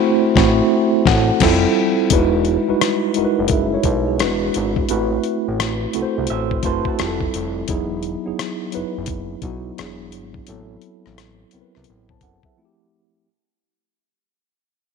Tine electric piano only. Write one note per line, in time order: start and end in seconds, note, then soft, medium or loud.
0.00 0.36 A3 loud
0.00 0.37 C4 loud
0.00 0.37 E4 loud
0.00 0.38 F#4 loud
0.00 1.42 C5 loud
0.36 0.61 A3 medium
0.36 0.61 C4 medium
0.36 0.62 E4 medium
0.36 0.62 F#4 medium
1.07 1.32 A4 medium
1.07 1.32 F#5 medium
1.42 1.66 G3 medium
1.42 1.67 C4 medium
1.42 1.67 E4 medium
1.42 1.67 F4 medium
1.42 1.67 A4 medium
2.12 2.64 G#3 medium
2.12 2.65 D#4 medium
2.12 2.65 E4 medium
2.12 2.65 F#4 medium
2.12 2.65 B4 medium
2.68 2.72 G3 soft
2.68 3.14 D#4 medium
2.68 3.14 E4 medium
2.68 3.14 F#4 medium
2.68 3.14 B4 medium
2.75 3.15 G#3 medium
3.16 3.82 G#3 medium
3.16 3.51 D#4 medium
3.16 3.51 E4 medium
3.16 3.51 F#4 medium
3.16 3.24 A#4 medium
3.25 3.55 B4 medium
3.51 3.72 G#4 soft
3.51 3.71 E5 medium
3.74 3.85 E4 medium
3.74 3.85 C#5 medium
3.86 4.07 D#4 soft
3.86 4.06 B4 medium
4.08 4.41 B3 soft
4.08 4.40 G#4 medium
4.20 4.87 G#3 medium
4.20 4.87 D4 medium
4.20 4.87 E4 medium
4.20 4.87 F#4 medium
4.20 4.88 B4 medium
4.89 5.90 A3 medium
4.89 5.90 C4 medium
4.89 5.90 E4 medium
4.89 5.91 F#4 medium
4.89 5.91 B4 medium
5.94 6.61 A3 medium
5.94 6.61 C4 medium
5.94 6.61 E4 medium
5.94 6.62 F#4 medium
5.94 6.03 A4 medium
6.02 6.65 C5 medium
6.64 6.99 A3 medium
6.64 6.98 C4 medium
6.64 6.99 E4 medium
6.64 6.99 F#4 medium
6.64 7.00 B4 medium
6.99 7.66 G3 medium
6.99 7.66 C4 medium
6.99 7.66 E4 medium
6.99 7.66 F4 medium
6.99 7.08 G4 medium
7.07 7.70 A4 medium
7.69 8.22 F#3 medium
7.69 8.22 B3 medium
7.69 8.22 D#4 medium
7.69 8.23 E4 medium
7.69 8.23 G#4 loud
8.25 8.71 F#3 medium
8.25 8.71 B3 medium
8.25 8.71 D#4 medium
8.25 8.72 E4 medium
8.25 8.72 G#4 medium
8.73 9.40 F#3 medium
8.73 9.40 B3 medium
8.73 9.40 D#4 medium
8.73 9.41 E4 medium
8.73 9.41 B4 medium
9.43 9.76 F#3 medium
9.43 9.77 B3 medium
9.43 9.78 D#4 medium
9.43 9.78 E4 medium
9.43 9.79 F#4 medium
9.78 10.45 F#3 medium
9.78 10.45 B3 medium
9.78 10.45 D4 medium
9.78 10.46 E4 medium
9.78 10.46 G#4 medium
10.48 11.48 F#3 medium
10.48 11.48 B3 medium
10.48 11.49 C4 medium
10.48 11.49 E4 medium
10.48 11.49 A4 medium
11.53 12.19 F#3 medium
11.53 12.19 B3 medium
11.53 12.20 C4 medium
11.53 12.20 E4 medium
11.53 11.61 A#4 medium
11.61 11.91 B4 medium
12.10 12.22 C5 soft
12.10 12.22 A5 soft
12.23 12.44 A4 soft
12.23 12.43 F#5 medium
12.45 12.78 G#4 soft
12.45 12.78 E5 soft
12.57 13.24 F3 medium
12.57 13.24 A3 medium
12.57 13.24 C4 medium
12.57 13.25 E4 medium
12.57 12.66 F4 medium
12.65 13.28 G4 medium